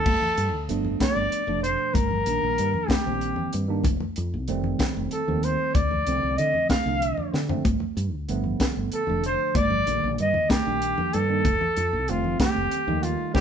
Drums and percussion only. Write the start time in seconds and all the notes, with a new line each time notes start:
0.06 kick, crash, high conga
0.22 low conga
0.38 closed hi-hat
0.69 closed hi-hat
0.85 low conga
1.00 kick, snare, closed hi-hat, high conga
1.32 closed hi-hat
1.47 low conga
1.64 closed hi-hat
1.94 kick, closed hi-hat, high conga
2.11 low conga
2.26 closed hi-hat, low conga
2.58 closed hi-hat
2.74 low conga
2.89 kick, snare, closed hi-hat, high conga
3.21 closed hi-hat
3.36 low conga
3.53 closed hi-hat
3.84 kick, closed hi-hat, high conga
4.00 low conga
4.16 closed hi-hat, low conga
4.48 closed hi-hat
4.64 low conga
4.79 kick, snare, closed hi-hat, high conga
5.11 closed hi-hat
5.28 low conga
5.43 closed hi-hat
5.75 kick, closed hi-hat, high conga, low conga
5.91 low conga
6.07 closed hi-hat
6.23 low conga
6.38 closed hi-hat
6.54 low conga
6.69 kick, snare, closed hi-hat, high conga, low conga
7.02 closed hi-hat
7.17 low conga
7.34 snare
7.49 floor tom, low conga
7.65 kick, closed hi-hat, high conga
7.80 low conga
7.96 closed hi-hat, low conga
8.29 closed hi-hat
8.44 low conga
8.60 kick, snare, closed hi-hat, high conga
8.92 closed hi-hat
9.07 low conga
9.24 closed hi-hat
9.55 kick, closed hi-hat, high conga
9.70 low conga
9.87 closed hi-hat, low conga
10.18 closed hi-hat
10.34 low conga
10.50 kick, snare, closed hi-hat, high conga
10.82 closed hi-hat
10.98 low conga
11.13 closed hi-hat
11.45 kick, closed hi-hat, high conga
11.61 low conga
11.76 closed hi-hat, low conga
12.08 closed hi-hat
12.24 low conga
12.40 kick, snare, closed hi-hat, high conga
12.71 closed hi-hat
12.88 low conga
13.03 closed hi-hat
13.35 kick, snare, high conga